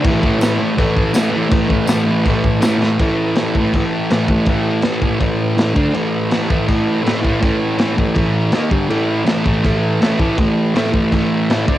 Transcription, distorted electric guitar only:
0.03 0.39 A2 loud
0.03 0.26 E3 loud
0.08 0.21 A3 loud
0.21 0.43 A3 medium
0.26 0.41 E3 medium
0.39 0.75 A2 medium
0.39 0.63 E3 medium
0.44 0.58 A3 medium
0.59 0.79 A3 medium
0.63 0.77 E3 medium
0.75 1.12 A2 loud
0.75 1.14 E3 loud
0.80 1.16 A3 loud
1.13 1.49 A2 medium
1.13 1.36 E3 medium
1.13 1.31 A3 loud
1.31 1.52 A3 medium
1.36 1.50 E3 medium
1.49 1.85 A2 medium
1.49 1.71 E3 loud
1.53 1.66 A3 loud
1.67 1.90 A3 medium
1.72 1.88 E3 medium
1.87 2.24 A2 medium
1.87 2.10 E3 medium
1.91 2.05 A3 medium
2.06 2.28 A3 medium
2.11 2.26 E3 medium
2.25 2.59 A2 medium
2.25 2.62 E3 loud
2.29 2.64 A3 loud
2.61 2.97 A2 medium
2.61 2.82 E3 medium
2.65 2.78 A3 medium
2.79 2.97 A3 medium
2.84 3.00 E3 medium
3.00 3.36 A2 loud
3.00 3.37 E3 loud
3.00 3.38 A3 medium
3.36 3.55 A2 medium
3.36 3.55 E3 medium
3.36 3.58 A3 loud
3.56 3.73 A2 medium
3.56 3.75 E3 medium
3.56 3.76 A3 medium
3.75 4.10 A2 medium
3.75 4.10 E3 loud
3.75 4.12 A3 loud
4.11 4.28 A2 medium
4.11 4.29 E3 loud
4.11 4.30 A3 loud
4.29 4.47 A2 medium
4.29 4.48 E3 medium
4.29 4.49 A3 medium
4.48 4.82 A2 medium
4.48 4.84 E3 loud
4.48 4.85 A3 loud
4.83 5.01 A2 medium
4.83 5.02 E3 medium
4.83 5.04 A3 medium
5.02 5.18 A2 medium
5.02 5.19 E3 medium
5.02 5.21 A3 medium
5.19 5.56 A2 medium
5.19 5.55 E3 loud
5.19 5.58 A3 loud
5.57 5.74 A2 medium
5.57 5.74 E3 medium
5.57 5.75 A3 loud
5.74 5.92 D3 medium
5.74 5.95 A3 loud
5.74 5.93 D4 loud
5.94 6.29 A2 medium
5.94 6.30 E3 loud
5.94 6.32 A3 loud
6.31 6.48 A2 medium
6.31 6.49 E3 medium
6.31 6.49 A3 medium
6.49 6.66 A2 medium
6.49 6.67 E3 medium
6.49 6.68 A3 loud
6.67 7.02 A2 medium
6.67 7.02 E3 loud
6.67 7.03 A3 loud
7.03 7.20 A2 medium
7.03 7.21 E3 medium
7.03 7.22 A3 loud
7.21 7.40 A2 medium
7.21 7.41 E3 medium
7.21 7.42 A3 loud
7.41 7.77 A2 loud
7.41 7.78 E3 loud
7.41 7.80 A3 loud
7.78 7.96 A2 medium
7.78 7.97 E3 medium
7.78 7.98 A3 medium
7.97 8.14 A2 medium
7.97 8.15 E3 medium
7.97 8.15 A3 loud
8.15 8.51 A2 loud
8.15 8.51 E3 medium
8.15 8.52 A3 medium
8.53 8.70 D#3 loud
8.53 8.71 A#3 loud
8.53 8.71 D#4 loud
8.70 8.88 G2 loud
8.70 8.88 D3 loud
8.70 8.89 G3 loud
8.89 9.24 A2 medium
8.89 9.25 E3 loud
8.89 9.26 A3 loud
9.25 9.43 A2 medium
9.25 9.44 E3 medium
9.25 9.46 A3 medium
9.44 9.62 A2 medium
9.44 9.63 E3 medium
9.44 9.65 A3 loud
9.63 10.00 A2 loud
9.63 10.00 E3 loud
9.63 10.02 A3 loud
10.01 10.18 A2 loud
10.01 10.18 E3 medium
10.01 10.20 A3 medium
10.19 10.37 A2 medium
10.19 10.38 E3 medium
10.19 10.39 A3 medium
10.38 10.73 A2 medium
10.38 10.74 E3 medium
10.38 10.75 A3 loud
10.74 10.91 A2 medium
10.74 10.93 E3 medium
10.74 10.94 A3 loud
10.92 11.11 A2 medium
10.92 11.12 E3 medium
10.92 11.14 A3 medium
11.12 11.49 A2 medium
11.12 11.49 E3 loud
11.12 11.50 A3 loud
11.50 11.66 A2 medium
11.50 11.66 E3 loud
11.50 11.68 A3 medium
11.67 11.78 D3 loud
11.67 11.78 A3 loud
11.67 11.78 D4 loud

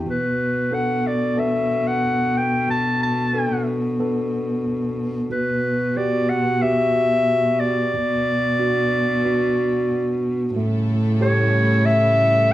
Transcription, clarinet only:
0.09 0.76 B4 medium
0.74 1.08 F#5 medium
1.07 1.40 D5 medium
1.39 1.89 E5 medium
1.87 2.38 F#5 medium
2.37 2.69 G5 medium
2.70 3.00 A5 medium
3.03 3.64 A5 medium
5.31 5.98 B4 medium
5.97 6.31 D5 medium
6.29 6.63 F#5 medium
6.62 7.61 E5 medium
7.59 10.22 D5 medium
11.22 11.87 C#5 medium
11.85 12.53 E5 loud

